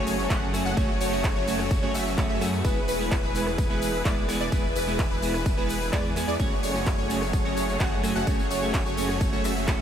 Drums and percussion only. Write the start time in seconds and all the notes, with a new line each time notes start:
0.07 open hi-hat, tambourine
0.19 tambourine
0.30 kick, clap, ride, tambourine
0.54 cross-stick, open hi-hat, tambourine
0.66 tambourine
0.77 kick, ride, tambourine
1.01 open hi-hat, tambourine
1.13 tambourine
1.24 kick, clap, ride, tambourine
1.48 open hi-hat, tambourine
1.59 cross-stick, tambourine
1.71 kick, ride, tambourine
1.94 clap, open hi-hat, tambourine
2.07 tambourine
2.18 kick, clap, ride, tambourine
2.41 cross-stick, open hi-hat, tambourine
2.54 tambourine
2.65 kick, ride, tambourine
2.88 open hi-hat, tambourine
3.00 tambourine
3.11 kick, clap, ride, tambourine
3.35 open hi-hat, tambourine
3.47 cross-stick, tambourine
3.58 kick, ride, tambourine
3.82 open hi-hat, tambourine
3.94 tambourine
4.05 kick, clap, ride, tambourine
4.29 cross-stick, open hi-hat, tambourine
4.41 tambourine
4.52 kick, ride, tambourine
4.76 open hi-hat, tambourine
4.88 tambourine
4.99 kick, clap, ride, tambourine
5.22 open hi-hat, tambourine
5.34 cross-stick, tambourine
5.46 kick, ride, tambourine
5.69 open hi-hat, tambourine
5.82 tambourine
5.93 kick, clap, ride, tambourine
6.16 cross-stick, open hi-hat, tambourine
6.29 tambourine
6.40 kick, ride, tambourine
6.63 open hi-hat, tambourine
6.75 tambourine
6.86 kick, clap, ride, tambourine
7.10 open hi-hat, tambourine
7.22 cross-stick, tambourine
7.33 kick, ride, tambourine
7.57 open hi-hat, tambourine
7.69 tambourine
7.80 kick, clap, ride, tambourine
8.04 cross-stick, open hi-hat, tambourine
8.16 tambourine
8.27 kick, ride, tambourine
8.39 tambourine
8.50 open hi-hat, tambourine
8.63 tambourine
8.74 kick, clap, ride, tambourine
8.86 tambourine
8.97 open hi-hat, tambourine
9.09 cross-stick, tambourine
9.21 kick, ride, tambourine
9.33 tambourine
9.44 clap, open hi-hat, tambourine
9.57 tambourine
9.68 kick, clap, ride, tambourine